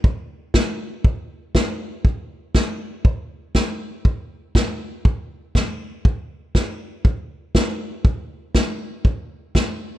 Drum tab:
SD |--o---o-|--o---o-|--o---o-|--o---o-|
BD |o-o-o-o-|o-o-o-o-|o-o-o-o-|o-o-o-o-|

SD |--o---o-|
BD |o-o-o-o-|